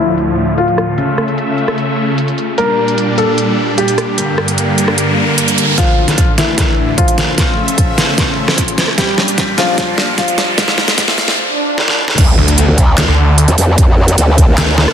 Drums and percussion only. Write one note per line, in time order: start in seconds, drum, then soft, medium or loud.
0.18 closed hi-hat medium
0.58 closed hi-hat medium
0.68 closed hi-hat soft
0.78 cross-stick medium
0.78 closed hi-hat soft
0.98 closed hi-hat medium
1.18 cross-stick medium
1.28 closed hi-hat medium
1.38 closed hi-hat medium
1.58 closed hi-hat soft
1.68 cross-stick medium
1.78 closed hi-hat medium
2.18 closed hi-hat medium
2.28 closed hi-hat medium
2.38 closed hi-hat soft
2.58 closed hi-hat medium
2.88 closed hi-hat medium
2.98 closed hi-hat medium
3.18 closed hi-hat soft
3.38 closed hi-hat medium
3.78 closed hi-hat medium
3.88 closed hi-hat soft
3.98 cross-stick medium
3.98 closed hi-hat medium
4.18 closed hi-hat medium
4.38 cross-stick medium
4.48 closed hi-hat medium
4.58 closed hi-hat medium
4.78 closed hi-hat medium
4.88 cross-stick medium
4.98 closed hi-hat medium
5.38 closed hi-hat medium
5.48 closed hi-hat medium
5.58 closed hi-hat medium
5.78 kick medium
5.78 snare soft
5.78 closed hi-hat medium
6.08 snare soft
6.08 closed hi-hat medium
6.18 kick medium
6.18 closed hi-hat medium
6.38 snare soft
6.38 closed hi-hat medium
6.58 kick loud
6.58 cross-stick soft
6.58 snare medium
6.58 closed hi-hat medium
6.98 kick loud
6.98 closed hi-hat medium
7.08 closed hi-hat medium
7.18 snare medium
7.18 closed hi-hat medium
7.38 kick medium
7.38 snare medium
7.38 closed hi-hat medium
7.68 closed hi-hat medium
7.78 kick loud
7.78 closed hi-hat medium
7.98 snare medium
7.98 closed hi-hat medium
8.18 kick loud
8.18 snare medium
8.18 closed hi-hat medium
8.48 cross-stick medium
8.48 snare medium
8.58 kick loud
8.58 closed hi-hat medium
8.68 closed hi-hat soft
8.78 snare medium
8.78 closed hi-hat medium
8.88 cross-stick medium
8.98 kick loud
8.98 snare medium
8.98 closed hi-hat medium
9.18 snare medium
9.28 closed hi-hat medium
9.38 kick loud
9.38 snare medium
9.38 closed hi-hat medium
9.58 snare medium
9.58 closed hi-hat medium
9.78 kick loud
9.78 snare medium
9.78 closed hi-hat medium
9.98 snare medium
10.18 kick medium
10.18 snare medium
10.18 closed hi-hat medium
10.28 closed hi-hat medium
10.38 snare medium
10.38 closed hi-hat medium
10.58 kick loud
10.58 snare medium
10.58 closed hi-hat medium
10.68 snare medium
10.78 snare medium
10.88 snare medium
10.88 closed hi-hat medium
10.98 kick loud
10.98 snare medium
10.98 closed hi-hat medium
11.08 snare medium
11.18 snare loud
11.18 closed hi-hat soft
11.28 snare medium
11.78 snare medium
11.88 snare medium
12.08 snare medium
12.18 kick loud
12.18 closed hi-hat medium
12.18 crash loud
12.48 closed hi-hat medium
12.58 closed hi-hat medium
12.78 kick medium
12.78 closed hi-hat medium
12.98 cross-stick medium
12.98 snare loud
12.98 clap loud
12.98 closed hi-hat medium
13.38 closed hi-hat medium
13.48 closed hi-hat medium
13.58 open hi-hat medium
13.78 kick loud
13.78 closed hi-hat medium
14.08 closed hi-hat medium
14.18 closed hi-hat medium
14.38 kick medium
14.38 closed hi-hat medium
14.58 snare loud
14.58 clap medium
14.58 closed hi-hat medium
14.78 snare medium
14.88 cross-stick medium